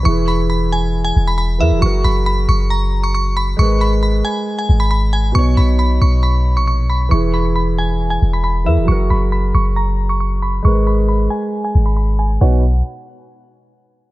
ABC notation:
X:1
M:4/4
L:1/16
Q:1/4=136
K:B
V:1 name="Synth bell"
c'2 b2 b2 g3 g2 b b2 e2 | c'2 b2 b2 c'2 a3 c' c'2 b2 | c'2 b2 b2 g3 g2 b b2 g2 | c'2 b2 b2 c'2 b3 c' c'2 b2 |
c'2 b2 b2 g3 g2 b b2 e2 | c'2 b2 b2 c'2 a3 c' c'2 b2 | c'2 b2 b2 g3 g2 b b2 g2 | f2 z12 z2 |]
V:2 name="Grand piano"
[E,EGB]12- [E,EGB]2 [E,EGA]2 | [F,FGA]16 | [G,GAB]16 | [B,,B,Dc]16 |
[E,EGB]12- [E,EGB]2 [E,EGA]2 | [F,FGA]16 | [G,GAB]16 | [B,,B,Dc]2 z12 z2 |]
V:3 name="808-style bass" clef=bass
E,,,8- E,,,2 E,,,4 E,, E,,, | F,,,2 F,,,4 F,,,8- F,,,2 | G,,,6 z4 G,,,6 | B,,,2 B,,,4 B,,,4- B,,, A,,,2- A,,,/2 B,,,2- B,,,/2 |
E,,,8- E,,,2 E,,,4 E,, E,,, | F,,,2 F,,,4 F,,,8- F,,,2 | G,,,6 z4 G,,,6 | B,,,4 z12 |]